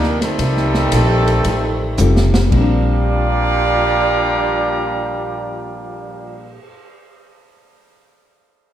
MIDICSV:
0, 0, Header, 1, 8, 480
1, 0, Start_track
1, 0, Key_signature, -2, "major"
1, 0, Tempo, 534759
1, 359, Time_signature, 4, 2, 24, 8
1, 7837, End_track
2, 0, Start_track
2, 0, Title_t, "Trumpet section"
2, 0, Program_c, 0, 61
2, 0, Note_on_c, 0, 55, 89
2, 0, Note_on_c, 0, 62, 93
2, 0, Note_on_c, 0, 63, 86
2, 0, Note_on_c, 0, 70, 103
2, 187, Note_off_c, 0, 55, 0
2, 191, Note_off_c, 0, 63, 0
2, 194, Note_on_c, 0, 60, 95
2, 197, Note_off_c, 0, 62, 0
2, 197, Note_on_c, 0, 55, 101
2, 199, Note_off_c, 0, 70, 0
2, 200, Note_on_c, 0, 69, 117
2, 202, Note_on_c, 0, 63, 81
2, 2084, Note_off_c, 0, 60, 0
2, 2086, Note_off_c, 0, 55, 0
2, 2087, Note_off_c, 0, 69, 0
2, 2088, Note_off_c, 0, 63, 0
2, 2267, Note_on_c, 0, 82, 92
2, 2269, Note_on_c, 0, 67, 97
2, 2272, Note_on_c, 0, 77, 91
2, 2273, Note_on_c, 0, 74, 89
2, 5887, Note_off_c, 0, 82, 0
2, 5888, Note_off_c, 0, 67, 0
2, 5891, Note_off_c, 0, 77, 0
2, 5893, Note_off_c, 0, 74, 0
2, 7837, End_track
3, 0, Start_track
3, 0, Title_t, "Grand piano"
3, 0, Program_c, 1, 0
3, 1794, Note_on_c, 1, 60, 63
3, 1796, Note_on_c, 1, 55, 70
3, 1802, Note_on_c, 1, 65, 67
3, 1803, Note_on_c, 1, 69, 77
3, 2218, Note_on_c, 1, 46, 64
3, 2231, Note_off_c, 1, 55, 0
3, 2244, Note_on_c, 1, 55, 64
3, 2257, Note_off_c, 1, 60, 0
3, 2270, Note_on_c, 1, 60, 57
3, 2281, Note_off_c, 1, 65, 0
3, 2281, Note_off_c, 1, 69, 0
3, 2300, Note_on_c, 1, 62, 57
3, 2325, Note_on_c, 1, 70, 75
3, 5874, Note_off_c, 1, 46, 0
3, 5900, Note_off_c, 1, 55, 0
3, 5926, Note_off_c, 1, 60, 0
3, 5956, Note_off_c, 1, 62, 0
3, 5980, Note_off_c, 1, 70, 0
3, 7837, End_track
4, 0, Start_track
4, 0, Title_t, "Hollow-body jazz guitar"
4, 0, Program_c, 2, 26
4, 0, Note_on_c, 2, 48, 59
4, 0, Note_on_c, 2, 53, 74
4, 0, Note_on_c, 2, 58, 72
4, 0, Note_on_c, 2, 63, 76
4, 227, Note_off_c, 2, 48, 0
4, 231, Note_off_c, 2, 53, 0
4, 234, Note_off_c, 2, 58, 0
4, 234, Note_off_c, 2, 63, 0
4, 352, Note_on_c, 2, 53, 52
4, 367, Note_on_c, 2, 57, 54
4, 373, Note_on_c, 2, 63, 66
4, 379, Note_on_c, 2, 67, 61
4, 697, Note_off_c, 2, 53, 0
4, 705, Note_off_c, 2, 57, 0
4, 708, Note_off_c, 2, 63, 0
4, 711, Note_off_c, 2, 67, 0
4, 837, Note_on_c, 2, 53, 68
4, 846, Note_on_c, 2, 57, 78
4, 853, Note_on_c, 2, 63, 78
4, 857, Note_on_c, 2, 67, 79
4, 1180, Note_off_c, 2, 53, 0
4, 1184, Note_off_c, 2, 57, 0
4, 1188, Note_off_c, 2, 63, 0
4, 1190, Note_off_c, 2, 67, 0
4, 1316, Note_on_c, 2, 53, 51
4, 1323, Note_on_c, 2, 57, 52
4, 1330, Note_on_c, 2, 63, 57
4, 1342, Note_on_c, 2, 67, 59
4, 1659, Note_off_c, 2, 53, 0
4, 1663, Note_off_c, 2, 57, 0
4, 1666, Note_off_c, 2, 63, 0
4, 1672, Note_off_c, 2, 67, 0
4, 1790, Note_on_c, 2, 53, 65
4, 1803, Note_on_c, 2, 57, 74
4, 1807, Note_on_c, 2, 63, 79
4, 1814, Note_on_c, 2, 67, 80
4, 2136, Note_off_c, 2, 53, 0
4, 2143, Note_off_c, 2, 57, 0
4, 2145, Note_off_c, 2, 63, 0
4, 2148, Note_off_c, 2, 67, 0
4, 2256, Note_on_c, 2, 46, 66
4, 2295, Note_on_c, 2, 55, 70
4, 2323, Note_on_c, 2, 60, 77
4, 2341, Note_on_c, 2, 62, 81
4, 5912, Note_off_c, 2, 46, 0
4, 5951, Note_off_c, 2, 55, 0
4, 5979, Note_off_c, 2, 60, 0
4, 5997, Note_off_c, 2, 62, 0
4, 7837, End_track
5, 0, Start_track
5, 0, Title_t, "Trombone section"
5, 0, Program_c, 3, 61
5, 0, Note_on_c, 3, 51, 94
5, 0, Note_on_c, 3, 55, 87
5, 0, Note_on_c, 3, 58, 90
5, 188, Note_off_c, 3, 51, 0
5, 191, Note_on_c, 3, 48, 86
5, 193, Note_on_c, 3, 57, 93
5, 198, Note_on_c, 3, 51, 93
5, 199, Note_off_c, 3, 58, 0
5, 200, Note_off_c, 3, 55, 0
5, 2082, Note_off_c, 3, 48, 0
5, 2083, Note_off_c, 3, 57, 0
5, 2086, Note_off_c, 3, 51, 0
5, 2257, Note_on_c, 3, 46, 105
5, 2261, Note_on_c, 3, 62, 102
5, 2262, Note_on_c, 3, 53, 103
5, 2263, Note_on_c, 3, 55, 100
5, 5877, Note_off_c, 3, 46, 0
5, 5881, Note_off_c, 3, 62, 0
5, 5882, Note_off_c, 3, 53, 0
5, 5883, Note_off_c, 3, 55, 0
5, 7837, End_track
6, 0, Start_track
6, 0, Title_t, "Upright bass"
6, 0, Program_c, 4, 32
6, 0, Note_on_c, 4, 38, 89
6, 339, Note_off_c, 4, 38, 0
6, 350, Note_on_c, 4, 36, 95
6, 820, Note_off_c, 4, 36, 0
6, 828, Note_on_c, 4, 34, 98
6, 1299, Note_off_c, 4, 34, 0
6, 1303, Note_on_c, 4, 33, 87
6, 1776, Note_off_c, 4, 33, 0
6, 1787, Note_on_c, 4, 29, 104
6, 2255, Note_off_c, 4, 29, 0
6, 2261, Note_on_c, 4, 34, 99
6, 5880, Note_off_c, 4, 34, 0
6, 7837, End_track
7, 0, Start_track
7, 0, Title_t, "Cymbal swell"
7, 2587, Note_on_c, 9, 59, 50
7, 6019, Note_off_c, 9, 59, 0
7, 7837, End_track
8, 0, Start_track
8, 0, Title_t, "Drums"
8, 29, Note_on_c, 9, 38, 30
8, 119, Note_off_c, 9, 38, 0
8, 190, Note_on_c, 9, 38, 50
8, 195, Note_on_c, 9, 51, 60
8, 279, Note_off_c, 9, 38, 0
8, 285, Note_off_c, 9, 51, 0
8, 348, Note_on_c, 9, 51, 71
8, 349, Note_on_c, 9, 36, 26
8, 438, Note_off_c, 9, 51, 0
8, 439, Note_off_c, 9, 36, 0
8, 512, Note_on_c, 9, 38, 32
8, 601, Note_off_c, 9, 38, 0
8, 666, Note_on_c, 9, 38, 52
8, 756, Note_off_c, 9, 38, 0
8, 823, Note_on_c, 9, 44, 54
8, 823, Note_on_c, 9, 51, 86
8, 826, Note_on_c, 9, 36, 24
8, 913, Note_off_c, 9, 44, 0
8, 913, Note_off_c, 9, 51, 0
8, 916, Note_off_c, 9, 36, 0
8, 1145, Note_on_c, 9, 51, 54
8, 1234, Note_off_c, 9, 51, 0
8, 1296, Note_on_c, 9, 51, 70
8, 1302, Note_on_c, 9, 36, 27
8, 1386, Note_off_c, 9, 51, 0
8, 1392, Note_off_c, 9, 36, 0
8, 1773, Note_on_c, 9, 44, 77
8, 1778, Note_on_c, 9, 47, 56
8, 1863, Note_off_c, 9, 44, 0
8, 1867, Note_off_c, 9, 47, 0
8, 1943, Note_on_c, 9, 38, 72
8, 2033, Note_off_c, 9, 38, 0
8, 2099, Note_on_c, 9, 38, 97
8, 2189, Note_off_c, 9, 38, 0
8, 2262, Note_on_c, 9, 36, 61
8, 2262, Note_on_c, 9, 49, 59
8, 2352, Note_off_c, 9, 36, 0
8, 2352, Note_off_c, 9, 49, 0
8, 7837, End_track
0, 0, End_of_file